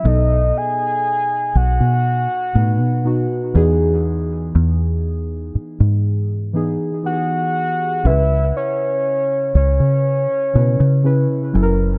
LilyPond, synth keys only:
\new Staff \with { instrumentName = "Synth keys" } { \time 4/4 \key cis \minor \tempo 4 = 60 <b, b dis' a'>4. r4 <b, b dis' b'>8 <b, b dis' fis'>8 <e b dis' gis'>8~ | <e b dis' gis'>4 r4. <e b dis' gis'>8 <e b dis' g' gis'>8. r16 | <cis cis' e' b'>4. r4 <cis cis' e' b'>8 <cis cis' e' b'>8 <fis cis' e' a' ais'>8 | }